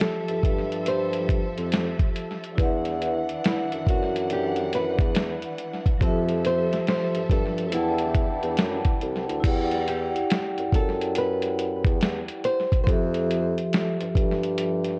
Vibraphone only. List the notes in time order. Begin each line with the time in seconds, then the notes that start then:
Already playing: F3 F4 G4 A4 E5
2.55 E4 B4
2.60 D5 F#5
2.64 E5
5.98 F3 F4
6.02 G4 A4
6.06 E5
7.69 E4 B4 D5
7.74 F#5 G5 A5
9.40 E4 G4
9.44 D5 F#5
9.48 G5
12.84 F3 F4
12.88 G4 A4
12.92 E5